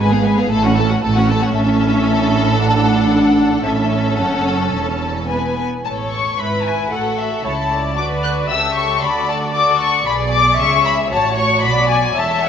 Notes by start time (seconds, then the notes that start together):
Already playing: B4
0.00 G#1 G#2 G#3 G#5
0.11 B3 G#4 F5
0.25 G#3 B4 G#5
0.38 B3 G#4 F5
0.51 A1 A2 A3 A4 A5
0.64 C#4 F#4 F#5
0.77 A3 A4 A5
0.90 C#4 F#4 F#5
1.03 A1 A2 A3 A4 A5
1.16 C#4 F#4 F#5
1.29 A3 A4 A5
1.42 C#4 F#4 F#5
1.55 A1 A2 C#4 A4 E5
2.59 D4 F#5
3.65 A1 A2 C#4 A4 E5
4.19 F#1 F#2 F#5
4.74 E1 E2 A5
5.30 B3 B4 G#5
5.85 A1 A2 A4 C#5 A5
6.12 C#6
6.38 G#1 G#2 E4 B4 B5
6.65 G#5
6.92 A1 A2 F#4 A4 F#5
7.19 E5
7.45 C#2 C#3 E4 A4 C#5 A5
7.71 C#5 D5
7.97 D2 D3 F#4 B4 D6
8.24 F#6
8.50 C#2 C#3 G4 A4 E5 E6
8.77 C#6
9.03 D2 D3 F#4 D5 B5
9.29 A5
9.55 F#4 A4 D6
9.81 C#6
10.07 B1 B2 G#4 D5 B5
10.33 D6
10.59 C#2 C#3 E5 C#6
10.85 B5
11.12 A1 A2 F#4 C#5 A5
11.39 C#6
11.64 B1 B2 D5 B5
11.91 G#5
12.17 E1 E2 A4 C#5 E5 A5
12.44 F#5